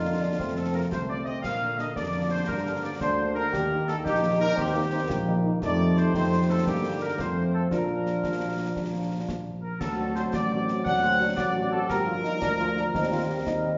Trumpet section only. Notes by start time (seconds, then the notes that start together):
Already playing: F4
0.57 A4
0.74 A#4
0.92 C5
1.08 D5
1.25 D#5
1.42 F5
1.78 D#5
1.96 D5
2.30 C5
2.47 A#4
2.82 D5
3.01 C5
3.35 A#4
3.88 A4
4.05 G4
4.40 A#4
4.57 G4
5.63 D5
5.99 C5
6.15 C5
6.49 A4
6.67 G4
7.02 A#4
7.20 C5
7.54 A4
7.72 A#4
9.63 A#4
9.81 A4
10.15 C5
10.33 D5
10.85 F#5
11.37 D5
11.71 A4
11.89 A#4